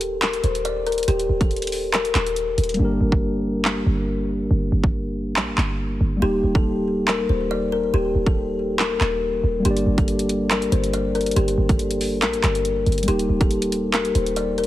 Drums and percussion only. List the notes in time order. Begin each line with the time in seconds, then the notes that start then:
0.01 closed hi-hat
0.22 clap, closed hi-hat
0.33 closed hi-hat
0.44 closed hi-hat
0.55 closed hi-hat
0.65 closed hi-hat
0.86 closed hi-hat
0.92 closed hi-hat
0.98 closed hi-hat
1.03 closed hi-hat
1.08 closed hi-hat
1.19 closed hi-hat
1.41 kick, closed hi-hat
1.51 closed hi-hat
1.56 closed hi-hat
1.62 closed hi-hat
1.67 closed hi-hat
1.72 open hi-hat
1.94 clap, closed hi-hat
2.05 closed hi-hat
2.15 clap, closed hi-hat
2.26 closed hi-hat
2.36 closed hi-hat
2.58 closed hi-hat
2.64 closed hi-hat
2.69 closed hi-hat
2.74 closed hi-hat
3.12 kick
3.65 clap
4.84 kick
5.36 clap
5.58 clap
6.55 kick
7.08 clap
8.26 kick
8.79 clap
9.01 clap
9.65 closed hi-hat
9.77 closed hi-hat
9.98 kick, closed hi-hat
10.08 closed hi-hat
10.19 closed hi-hat
10.29 closed hi-hat
10.51 clap, closed hi-hat
10.62 closed hi-hat
10.72 closed hi-hat
10.84 closed hi-hat
10.93 closed hi-hat
11.15 closed hi-hat
11.21 closed hi-hat
11.26 closed hi-hat
11.31 closed hi-hat
11.36 closed hi-hat
11.48 closed hi-hat
11.69 kick, closed hi-hat
11.79 closed hi-hat
11.91 closed hi-hat
12.01 open hi-hat
12.22 clap, closed hi-hat
12.33 closed hi-hat
12.44 clap, closed hi-hat
12.55 closed hi-hat
12.65 closed hi-hat
12.86 closed hi-hat
12.92 closed hi-hat
12.98 closed hi-hat
13.03 closed hi-hat
13.08 closed hi-hat
13.19 closed hi-hat
13.41 kick, closed hi-hat
13.51 closed hi-hat
13.62 closed hi-hat
13.72 closed hi-hat
13.93 clap, closed hi-hat
14.05 closed hi-hat
14.15 closed hi-hat
14.26 closed hi-hat
14.36 closed hi-hat
14.58 closed hi-hat
14.64 closed hi-hat